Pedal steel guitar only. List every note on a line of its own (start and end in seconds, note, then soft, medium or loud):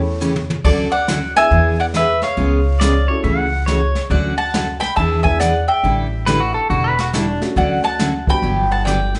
2.80 3.08 D5 medium
3.08 3.23 C#5 medium
3.24 3.38 E5 medium
3.38 3.66 F#5 medium
3.66 4.01 C#5 medium
6.26 6.41 B4 medium
6.40 6.54 F#4 medium
6.54 6.69 A4 medium
6.70 6.84 F#4 medium
6.84 6.98 B4 medium
7.00 7.14 F#4 medium
7.14 7.41 D4 medium